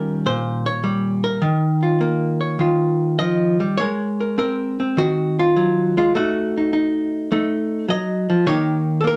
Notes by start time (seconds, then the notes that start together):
Already playing: D#3 G3 C#4 F4 A#4
0.26 A#2 C5
0.66 C#5
0.84 G3
1.24 A#4
1.42 D#3
1.83 F4
2.01 A#3
2.41 C#5
2.59 D#3 F4
3.19 F3 D#5
3.60 G3
3.77 G#3 A#4 C#5
4.20 A#4
4.38 C4 A#4
4.80 C4
4.97 D#3 F#4
5.39 F4
5.56 F#3
5.97 G#3 F4
6.15 A3 D#4 F#4
6.58 D#4
6.73 D#4
7.32 A3 D#4
7.88 F#3 D#5
8.30 F3
8.46 D#3 A#3 D#4 G4 C#5
9.01 A#3 A4
9.07 A#4